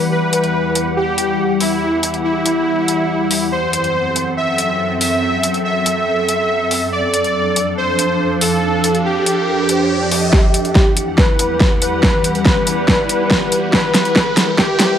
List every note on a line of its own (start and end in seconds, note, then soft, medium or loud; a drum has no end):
0.00 3.48 E2 medium
0.00 3.48 E3 medium
0.00 3.52 G3 medium
0.00 4.88 E4 medium
0.00 3.48 G4 medium
0.00 3.48 F#5 medium
0.00 6.92 F#5 medium
0.12 0.88 B4 loud
0.33 closed hi-hat medium
0.44 closed hi-hat soft
0.75 closed hi-hat medium
0.97 1.52 G4 medium
1.18 closed hi-hat medium
1.60 2.16 E4 medium
1.60 open hi-hat medium
2.03 closed hi-hat medium
2.14 closed hi-hat soft
2.24 3.44 E4 loud
2.46 closed hi-hat medium
2.88 closed hi-hat medium
3.31 open hi-hat medium
3.52 6.89 F#2 medium
3.52 6.89 F#3 medium
3.52 6.89 C4 medium
3.52 7.94 C4 medium
3.52 10.29 A4 medium
3.52 4.29 C5 loud
3.73 closed hi-hat medium
3.84 closed hi-hat soft
3.93 11.81 A4 medium
4.16 closed hi-hat medium
4.37 4.93 E5 medium
4.58 closed hi-hat medium
5.01 5.56 E5 loud
5.01 open hi-hat medium
5.43 closed hi-hat medium
5.54 closed hi-hat soft
5.65 6.84 E5 loud
5.86 closed hi-hat medium
6.29 closed hi-hat medium
6.71 open hi-hat medium
6.92 10.29 F2 medium
6.92 10.29 F3 medium
6.92 10.29 D4 medium
6.92 10.33 D4 medium
6.92 7.69 D5 loud
6.92 riser medium
7.14 closed hi-hat medium
7.24 closed hi-hat soft
7.52 10.33 F5 medium
7.56 closed hi-hat medium
7.77 8.33 C5 medium
7.99 closed hi-hat medium
8.41 8.97 A4 loud
8.41 open hi-hat medium
8.84 closed hi-hat medium
8.95 closed hi-hat soft
9.05 10.24 G4 loud
9.26 closed hi-hat medium
9.69 closed hi-hat medium
10.11 open hi-hat medium
10.33 14.98 E2 medium
10.33 14.98 E3 medium
10.33 14.98 E4 medium
10.33 11.10 G4 loud
10.33 14.98 G4 medium
10.33 14.98 F#5 medium
10.33 kick medium
10.33 snare soft
10.33 riser medium
10.45 14.98 G3 medium
10.54 closed hi-hat medium
10.65 closed hi-hat soft
10.75 kick loud
10.75 snare soft
10.87 14.29 F#5 medium
10.97 closed hi-hat medium
11.18 11.73 B4 loud
11.18 kick loud
11.18 snare medium
11.39 closed hi-hat medium
11.60 kick medium
11.60 snare medium
11.82 12.37 B4 loud
11.82 closed hi-hat medium
12.03 kick medium
12.03 snare medium
12.24 closed hi-hat medium
12.35 closed hi-hat soft
12.45 13.65 B4 loud
12.45 kick loud
12.45 snare medium
12.67 closed hi-hat medium
12.88 kick medium
12.88 snare medium
13.09 closed hi-hat medium
13.31 kick medium
13.31 snare medium
13.52 closed hi-hat medium
13.73 14.50 B4 loud
13.73 kick loud
13.73 snare medium
13.94 snare medium
13.94 closed hi-hat medium
14.05 closed hi-hat soft
14.16 14.98 E5 medium
14.16 kick loud
14.16 snare medium
14.37 snare medium
14.37 closed hi-hat medium
14.58 14.98 G4 loud
14.58 kick loud
14.58 snare medium
14.80 snare medium
14.80 closed hi-hat medium